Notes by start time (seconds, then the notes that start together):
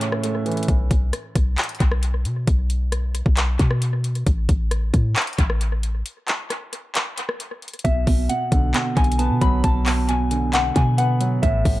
Already playing: A2 C#3 E3 A3
0.01 closed hi-hat
0.12 cross-stick
0.23 A3, closed hi-hat
0.46 E3, closed hi-hat
0.52 closed hi-hat
0.57 closed hi-hat
0.63 closed hi-hat
0.68 B1, kick, closed hi-hat
0.91 B1, kick, closed hi-hat
1.13 cross-stick, closed hi-hat
1.35 B1, kick, closed hi-hat
1.58 clap, closed hi-hat
1.63 closed hi-hat
1.69 closed hi-hat
1.75 closed hi-hat
1.80 B1, kick, closed hi-hat
1.92 cross-stick
2.03 closed hi-hat
2.25 B2, closed hi-hat
2.47 B1, kick, closed hi-hat
2.70 closed hi-hat
2.92 cross-stick, closed hi-hat
3.15 closed hi-hat
3.26 B1, kick
3.37 clap, closed hi-hat
3.59 B2, kick, closed hi-hat
3.71 cross-stick
3.82 closed hi-hat
4.04 closed hi-hat
4.15 closed hi-hat
4.27 A1, kick, closed hi-hat
4.49 A1, kick, closed hi-hat
4.71 cross-stick, closed hi-hat
4.94 A2, kick, closed hi-hat
5.16 clap, closed hi-hat
5.22 closed hi-hat
5.27 closed hi-hat
5.33 closed hi-hat
5.38 A1, kick, closed hi-hat
5.50 cross-stick
5.61 closed hi-hat
5.83 closed hi-hat
6.06 closed hi-hat
6.28 clap, closed hi-hat
6.50 cross-stick, closed hi-hat
6.73 closed hi-hat
6.95 clap, closed hi-hat
7.18 closed hi-hat
7.29 cross-stick
7.40 closed hi-hat
7.62 closed hi-hat
7.68 closed hi-hat
7.74 closed hi-hat
7.79 closed hi-hat
7.84 B1 B2 E5, kick, closed hi-hat
8.07 B1 B2, kick, open hi-hat
8.29 B2 F#5, closed hi-hat
8.52 B1 D3, kick, closed hi-hat
8.74 B2, clap, closed hi-hat
8.97 B1 G#5, kick, closed hi-hat
9.04 closed hi-hat
9.12 closed hi-hat
9.19 B3 A5, closed hi-hat
9.30 B2
9.41 B1 F#3 B5, kick, closed hi-hat
9.64 B1 B2 A5, kick, closed hi-hat
9.86 B2, clap, open hi-hat
10.09 B2 G#5, closed hi-hat
10.31 D3, closed hi-hat
10.53 B2 F#5, clap, closed hi-hat
10.76 B2 G#5, kick, closed hi-hat
10.98 B3 F#5, closed hi-hat
11.20 F#3, closed hi-hat
11.42 A1 A2 E5, kick, closed hi-hat
11.65 A1 A2, kick, open hi-hat